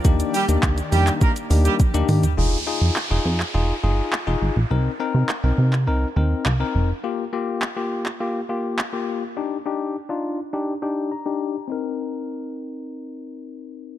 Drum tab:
HH |xxoxxxoxxxoxxxox|----------------|----------------|----------------|
SH |xxxxxxxxxxxxxxxx|----------------|----------------|----------------|
CP |----x--x--------|----x--x----x---|----x--x----x---|----x--x----x---|
T1 |------------o---|----------------|----------------|----------------|
T2 |--------------o-|----------------|----------------|----------------|
FT |---------------o|----------------|----------------|----------------|
BD |o---o---o---o---|----------------|----------------|----------------|

HH |----------------|----------------|
SH |----------------|----------------|
CP |----------------|----------------|
T1 |----------------|----------------|
T2 |----------------|----------------|
FT |----------------|----------------|
BD |----------------|----------------|